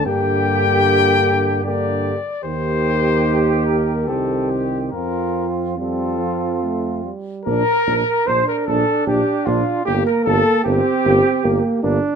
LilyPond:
<<
  \new Staff \with { instrumentName = "Trumpet" } { \time 3/4 \key bes \major \tempo 4 = 75 g''2 d''4 | c''4. bes'8 a'8 g'8 | bes'8. r16 a'4. r8 | bes'4 c''16 bes'16 a'8 g'8 f'8 |
g'16 bes'16 a'8 g'4. r8 | }
  \new Staff \with { instrumentName = "Flugelhorn" } { \time 3/4 \key bes \major g'2 g'8 r8 | g'2 g'4 | f'4 f'4. r8 | bes'4 c''16 bes'16 a'8 g'8 f'8 |
g'16 bes'16 a'8 g'4. r8 | }
  \new Staff \with { instrumentName = "French horn" } { \time 3/4 \key bes \major bes2 bes8 r8 | bes2 c'4 | c'4 c'4. r8 | d'8 d'8 d'8 d'8 d'8 d'8 |
bes8 bes8 bes8 bes8 bes8 bes8 | }
  \new Staff \with { instrumentName = "Trombone" } { \clef bass \time 3/4 \key bes \major d2 d8 r8 | ees2 ees4 | f4 g8 f8 a8 g8 | r4 d'2 |
bes4 c'4 bes8 d'8 | }
  \new Staff \with { instrumentName = "Tuba" } { \clef bass \time 3/4 \key bes \major g,2~ g,8 r8 | ees,2 c,4 | f,2~ f,8 r8 | bes,,8 bes,,8 bes,,8 bes,,8 bes,,8 bes,,8 |
g,,8 g,,8 g,,8 g,,8 g,,8 g,,8 | }
>>